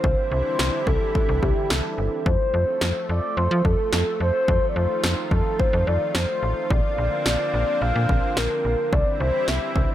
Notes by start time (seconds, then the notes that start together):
Already playing: C4 C5
0.04 C2 D3 E3 G3 E4, kick
0.32 C2 C5
0.59 C2, snare
0.87 C2 A4, kick
1.15 kick
1.29 C2
1.43 C2 G4, kick
1.70 C2 A4, snare
1.98 G1
2.26 F2 F3 A3 C5, kick
2.54 F2
2.81 F2, snare
3.09 F2 D5
3.37 F2 C5
3.51 F3
3.65 F2 A4, kick
3.93 F2, snare
4.20 F2 C5
4.48 F2 D#3 F4, kick
4.69 D5
4.76 F2 C5
5.04 F2, snare
5.31 F2 A4, kick
5.59 C5, kick
5.73 F2
5.87 F2 D5
6.15 F2 C5, snare
6.43 A1
6.70 A#1 D3 A#3 C4 D5, kick
6.98 A#1
7.26 A#1 D5, snare
7.54 A#1
7.81 A#1 F5
7.95 A#2
8.09 A#1, kick
8.37 A#1 A#4, snare
8.65 A#1
8.93 C2 E3 G3 C4 E4 D5, kick
9.20 C2 C5
9.48 C2 E5, snare
9.76 C2, kick